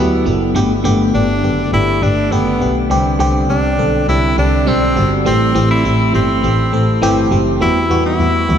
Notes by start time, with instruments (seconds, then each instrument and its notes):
Already playing: double bass D2, fm electric piano F#3 B3 E4 F#4 G4 A4, tenor saxophone B3
0.25 double bass F#1, fm electric piano F#3 B3 E4 G4
0.55 double bass G1, fm electric piano D3 A3 B3 G4
0.84 double bass G1, fm electric piano D3 A3 B3 G4
1.14 double bass G1, fm electric piano D3 A3 B3 G4, tenor saxophone D4
1.43 double bass F#1, fm electric piano D3 A3 B3 G4
1.72 double bass G1, fm electric piano D3 A3 B3 G4, tenor saxophone E4
2.02 double bass G1, fm electric piano D3 A3 B3 G4, tenor saxophone D4
2.31 double bass F#1, fm electric piano D3 A3 B3 G4, tenor saxophone B3
2.60 double bass B1, fm electric piano D3 A3 B3 G4
2.90 double bass C2, fm electric piano D3 G3 C4 G4
3.19 double bass C2, fm electric piano D3 G3 C4 G4
3.49 double bass C2, fm electric piano D3 G3 C4 G4, tenor saxophone D4
3.78 double bass B1, fm electric piano D3 G3 C4 A4
4.08 double bass C2, fm electric piano D3 G3 C4 G4, tenor saxophone E4
4.37 double bass C2, fm electric piano D3 G3 C4 G4, tenor saxophone D4
4.66 double bass B1, fm electric piano D3 G3 C4 D4, tenor saxophone C4
4.95 double bass G1, fm electric piano D3 G3 C4 F#4
5.25 double bass A1, fm electric piano E3 A3 C4 G4, tenor saxophone C4
5.54 double bass A1, fm electric piano E3 A3 C4 G4
5.71 tenor saxophone E4
5.84 double bass A1, fm electric piano E3 A3 C4 G4
6.13 double bass G1, fm electric piano E3 A3 C4 G4, tenor saxophone C4
6.43 double bass A1, fm electric piano E3 A3 C4 G4
6.72 double bass A1, fm electric piano E3 A3 C4 A4
7.02 double bass G1, fm electric piano E3 A3 C4 G4
7.31 double bass F#1, fm electric piano E3 A3 C4 G4
7.60 double bass E2, fm electric piano E3 G3 B3 F#4, tenor saxophone E4
7.90 double bass E2, fm electric piano E3 G3 B3 F#4
8.06 tenor saxophone E4
8.19 double bass E2, fm electric piano E3 G3 B3 F#4
8.48 double bass D2, fm electric piano E3 G3 B3 F#4